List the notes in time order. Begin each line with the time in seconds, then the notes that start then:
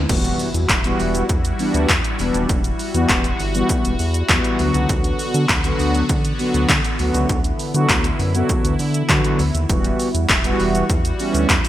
0.09 E1 E3 G3 B3 E4 F#4, kick, closed hi-hat, crash, impact, shaker
0.24 closed hi-hat, shaker
0.39 open hi-hat, shaker
0.54 E2, closed hi-hat, shaker
0.69 E1, kick, clap, closed hi-hat, shaker
0.84 E3 G3 B3 F#4, closed hi-hat, shaker
0.99 E1, open hi-hat, shaker
1.15 closed hi-hat, shaker
1.29 E2, kick, closed hi-hat, shaker
1.45 closed hi-hat, shaker
1.59 E3 G3 B3 D4, open hi-hat, shaker
1.74 D2, closed hi-hat, shaker
1.89 E2, kick, clap, closed hi-hat, shaker
2.04 closed hi-hat, shaker
2.19 E1 E3 G3 B3 D4, open hi-hat, shaker
2.34 D#1, closed hi-hat, shaker
2.49 E1 F#4, kick, closed hi-hat, shaker
2.64 closed hi-hat, shaker
2.79 open hi-hat, shaker
2.94 E2 E3 G3 B3 F#4, closed hi-hat, shaker
3.09 E1, kick, clap, closed hi-hat, shaker
3.24 closed hi-hat, shaker
3.40 G1, open hi-hat, shaker
3.54 E3 G3 B3 F#4, closed hi-hat, shaker
3.69 kick, closed hi-hat, shaker
3.84 E1, closed hi-hat, shaker
3.99 E2, open hi-hat, shaker
4.14 closed hi-hat, shaker
4.29 E2 E3 G3 B3 F#4, kick, clap, closed hi-hat, shaker
4.44 closed hi-hat, shaker
4.59 D2 D3 F#3 B3 F#4, open hi-hat, shaker
4.74 C#2, closed hi-hat, shaker
4.89 D2, kick, closed hi-hat, shaker
5.04 closed hi-hat, shaker
5.19 open hi-hat, shaker
5.34 D3, closed hi-hat, shaker
5.49 D2, kick, clap, closed hi-hat, shaker
5.64 D3 F#3 B3 F#4, closed hi-hat, shaker
5.79 D2, open hi-hat, shaker
5.95 closed hi-hat, shaker
6.09 D3, kick, closed hi-hat, shaker
6.25 closed hi-hat, shaker
6.39 D3 F#3 B3 F#4, open hi-hat, shaker
6.54 D2, closed hi-hat, shaker
6.69 D3, kick, clap, closed hi-hat, shaker
6.84 closed hi-hat, shaker
6.99 D2 D3 F#3 B3 E4 F#4, open hi-hat, shaker
7.14 C#2, closed hi-hat, shaker
7.29 D2, kick, closed hi-hat, shaker
7.44 closed hi-hat, shaker
7.59 open hi-hat, shaker
7.74 D3 F#3 B3 F#4, closed hi-hat, shaker
7.89 D2, kick, clap, closed hi-hat, shaker
8.04 closed hi-hat, shaker
8.19 F#2, open hi-hat, shaker
8.34 D3 F#3 B3 F#4, closed hi-hat, shaker
8.49 kick, closed hi-hat, shaker
8.64 D2, closed hi-hat, shaker
8.79 D3, open hi-hat, shaker
8.94 closed hi-hat, shaker
9.09 D3 F#3 B3 F#4, kick, clap, closed hi-hat, shaker
9.24 closed hi-hat, shaker
9.39 D2, open hi-hat, shaker
9.54 D#2, closed hi-hat, shaker
9.69 E1 E3 G3 B3 F#4, kick, closed hi-hat, shaker
9.84 closed hi-hat, shaker
10.00 open hi-hat, shaker
10.15 E2, closed hi-hat, shaker
10.29 E1, kick, clap, closed hi-hat, shaker
10.44 E3 G3 B3 F#4, closed hi-hat, shaker
10.59 E1, open hi-hat, shaker
10.75 closed hi-hat, shaker
10.90 E2, kick, closed hi-hat, shaker
11.05 closed hi-hat, shaker
11.19 E3 G3 B3 C#4, open hi-hat, shaker
11.34 D2, closed hi-hat, shaker
11.49 E2, kick, clap, closed hi-hat, shaker
11.65 closed hi-hat, shaker